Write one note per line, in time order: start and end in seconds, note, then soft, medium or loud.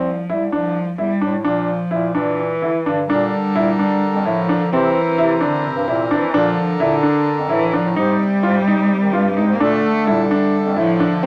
0.00 0.22 C2 medium
0.00 0.33 F3 medium
0.30 0.49 C2 medium
0.30 0.53 G3 medium
0.30 0.42 E4 medium
0.52 0.91 C2 medium
0.52 0.97 F3 medium
0.52 0.76 D4 medium
0.98 1.09 E2 medium
0.98 1.43 G3 medium
0.98 1.10 E4 medium
1.21 1.41 A2 medium
1.21 1.33 D4 medium
1.44 1.83 A#2 medium
1.44 2.17 F3 medium
1.44 1.68 D4 medium
1.91 2.11 A#2 medium
1.91 2.03 E4 medium
2.15 2.53 A#2 medium
2.15 2.88 E3 medium
2.15 2.39 D4 medium
2.62 2.72 D3 medium
2.62 2.74 E4 medium
2.86 3.05 G2 medium
2.86 3.08 D3 medium
2.86 2.98 D4 medium
3.07 3.29 A#2 medium
3.07 4.70 D3 medium
3.07 4.28 G3 medium
3.07 3.33 D4 medium
3.07 4.70 A4 medium
3.07 4.70 A#4 medium
3.56 3.75 A#2 medium
3.56 3.68 E4 medium
3.79 4.03 D4 medium
4.14 4.24 F2 medium
4.25 4.54 A2 medium
4.25 4.74 F3 loud
4.25 4.38 E4 medium
4.49 4.61 D4 medium
4.61 4.70 D3 medium
4.72 4.91 C3 medium
4.72 6.32 E3 medium
4.72 5.44 E3 loud
4.72 6.32 C4 medium
4.72 4.96 C4 medium
4.72 6.32 A#4 medium
5.18 5.37 C3 medium
5.18 5.30 E4 medium
5.41 5.67 D3 medium
5.41 5.64 D4 medium
5.65 6.11 C3 medium
5.76 5.85 G2 medium
5.88 6.16 A#2 medium
5.88 6.00 E4 medium
6.11 6.36 E3 medium
6.11 6.23 D4 medium
6.23 6.32 E3 medium
6.34 6.53 A#2 loud
6.34 7.96 D3 medium
6.34 6.80 F3 loud
6.34 6.57 D4 medium
6.34 7.95 A4 medium
6.34 7.95 A#4 medium
6.80 6.99 A#2 medium
6.80 7.46 D3 medium
6.80 6.92 E4 medium
7.03 7.27 D4 medium
7.39 7.48 F2 medium
7.49 7.78 A2 medium
7.49 7.76 E3 medium
7.49 7.61 E4 medium
7.73 7.96 F3 medium
7.73 7.85 D4 medium
7.85 7.94 A2 medium
7.96 8.16 G#2 medium
7.96 9.59 C3 medium
7.96 9.59 G3 medium
7.96 9.39 G3 loud
7.96 8.20 D#4 medium
7.96 9.59 G4 medium
8.43 8.62 G#2 medium
8.43 8.55 F4 medium
8.68 8.91 D#4 medium
9.02 9.12 D#3 medium
9.13 9.42 G2 medium
9.13 9.25 F4 medium
9.37 9.56 G#3 medium
9.37 9.49 D#4 medium
9.49 9.58 G#2 medium
9.54 9.62 A#3 medium
9.60 9.80 A#2 medium
9.60 11.23 D3 medium
9.60 10.10 A3 loud
9.60 11.23 A3 medium
9.60 9.84 D4 medium
9.60 11.23 A4 medium
10.07 10.27 A#2 medium
10.07 10.77 G3 medium
10.07 10.19 E4 medium
10.31 10.55 D4 medium
10.66 10.75 F2 medium
10.76 11.06 A2 medium
10.76 11.26 F3 loud
10.76 10.89 E4 medium
11.00 11.12 D4 medium
11.12 11.22 D3 medium
11.23 11.26 C4 medium